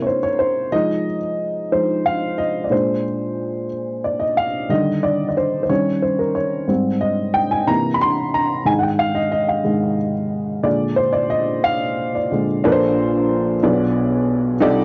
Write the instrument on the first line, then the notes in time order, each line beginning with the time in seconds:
upright piano
Already playing: C3 A#3 E4 A#4
0.02 C#5
0.07 C5
0.23 C#5
0.39 C5
0.72 F3 G#3 D#4 D#5
1.72 F3 G#3 D#4 C5
2.06 F5
2.38 D#5
2.64 D5
2.70 A#2 G#3 D4 C5
4.04 D5
4.20 D#5
4.37 F5
4.69 D3 D#3 G3 D#5
5.03 D5
5.29 D5
5.37 C5
5.63 C5
5.69 D#3 G3 C#4 C#5
6.02 C5
6.19 A#4
6.35 C#5
6.68 G#2 G3 C4
7.01 D#5
7.34 G5
7.51 G#5
7.67 C3 E3 A#3 A#5
7.94 B5
8.01 C6
8.34 A#5
8.65 G#2 D#3 G#3 G#5
8.79 F#5
8.83 G5
8.99 F5
9.15 D#5
9.32 D#5
9.49 F5
9.64 G#2 D#3 G#3
10.63 A#2 D3 G#3 D5
10.96 C5
11.13 D5
11.30 D#5
11.64 F5
12.15 D5
12.32 A#2 D3 G#3
12.64 A#1 A#2 D4 F4 A4 A#4 B4
12.72 C5
13.63 B1 B2 D4 F4 G#4 B4 D5
14.60 C2 C3 D#4 F4 G4 A4 D5